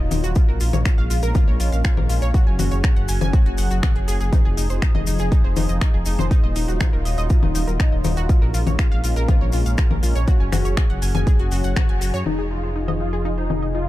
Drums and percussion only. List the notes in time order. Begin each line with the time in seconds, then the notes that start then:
0.11 open hi-hat, low conga, maracas
0.24 closed hi-hat, maracas
0.35 kick, closed hi-hat, maracas
0.60 open hi-hat, maracas
0.73 closed hi-hat, low conga, maracas
0.85 finger snap, kick, closed hi-hat, maracas
1.10 open hi-hat, maracas
1.23 closed hi-hat, maracas
1.35 kick, closed hi-hat, low conga, maracas
1.60 open hi-hat, maracas
1.72 closed hi-hat, maracas
1.84 finger snap, kick, closed hi-hat, maracas
1.97 low conga
2.09 open hi-hat, maracas
2.22 closed hi-hat, maracas
2.34 kick, closed hi-hat, maracas
2.59 open hi-hat, low conga, maracas
2.71 closed hi-hat, maracas
2.84 finger snap, kick, closed hi-hat, maracas
2.96 closed hi-hat
3.08 open hi-hat, maracas
3.21 closed hi-hat, low conga, maracas
3.33 kick, closed hi-hat, maracas
3.46 closed hi-hat
3.58 open hi-hat, maracas
3.70 closed hi-hat, maracas
3.83 finger snap, kick, closed hi-hat, low conga, maracas
3.96 closed hi-hat
4.08 open hi-hat, maracas
4.20 closed hi-hat, maracas
4.33 kick, closed hi-hat, low conga, maracas
4.57 open hi-hat, maracas
4.70 closed hi-hat, maracas
4.82 finger snap, kick, closed hi-hat, maracas
4.95 low conga
5.07 open hi-hat, maracas
5.19 closed hi-hat, maracas
5.32 kick, closed hi-hat, maracas
5.56 open hi-hat, low conga, maracas
5.69 maracas
5.81 finger snap, kick, closed hi-hat, maracas
6.05 open hi-hat, maracas
6.19 closed hi-hat, low conga, maracas
6.31 kick, closed hi-hat, maracas
6.56 open hi-hat, maracas
6.68 closed hi-hat, maracas
6.80 finger snap, kick, closed hi-hat, low conga, maracas
7.05 open hi-hat, maracas
7.18 closed hi-hat, maracas
7.30 kick, closed hi-hat, maracas
7.43 low conga
7.55 open hi-hat, maracas
7.68 closed hi-hat, maracas
7.80 finger snap, kick, closed hi-hat, maracas
8.04 open hi-hat, low conga, maracas
8.17 closed hi-hat, maracas
8.29 kick, closed hi-hat, maracas
8.54 open hi-hat, maracas
8.67 closed hi-hat, low conga, maracas
8.79 finger snap, kick, closed hi-hat, maracas
9.04 open hi-hat, maracas
9.16 closed hi-hat, maracas
9.28 kick, closed hi-hat, low conga, maracas
9.52 open hi-hat, maracas
9.66 closed hi-hat, maracas
9.78 finger snap, kick, closed hi-hat, maracas
9.91 low conga
10.03 open hi-hat, maracas
10.15 closed hi-hat, maracas
10.28 kick, closed hi-hat, maracas
10.52 finger snap, open hi-hat, low conga, maracas
10.65 closed hi-hat, maracas
10.77 finger snap, kick, closed hi-hat, maracas
10.90 closed hi-hat
11.02 open hi-hat, maracas
11.15 closed hi-hat, low conga, maracas
11.27 kick, closed hi-hat, maracas
11.39 closed hi-hat
11.51 open hi-hat, maracas
11.64 closed hi-hat, maracas
11.76 finger snap, kick, closed hi-hat, low conga, maracas
11.89 closed hi-hat
12.01 open hi-hat, maracas
12.14 closed hi-hat, maracas
12.26 crash, low conga
12.88 low conga
13.50 low conga